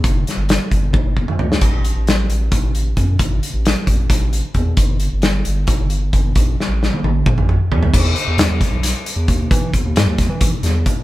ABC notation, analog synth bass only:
X:1
M:7/8
L:1/16
Q:1/4=133
K:E
V:1 name="Analog synth bass" clef=bass
F,,,2 z =G,,,2 z G,,,2 z G,,,2 z =D,,2 | A,,,3 A,,,3 A,,,2 z A,,,3 F,,2 | G,,,2 z A,,,2 z A,,,2 z A,,,2 z E,,2 | =G,,,3 G,,,3 G,,,2 z G,,,3 G,,,2 |
A,,,2 z A,,,2 z A,,,2 z A,,,2 z E,,2 | E,,2 z E,, E,, E,, z B,,,2 z2 E,, D,,2 | E,2 z D,, G,, D,,2 E,2 z E,,2 z2 |]